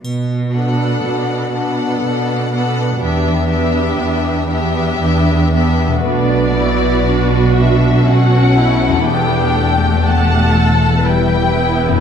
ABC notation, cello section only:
X:1
M:3/4
L:1/8
Q:1/4=60
K:Bm
V:1 name="Cello section" clef=bass
B,,2 B,,2 B,,2 | E,,2 E,,2 E,,2 | B,,6 | E,,6 |]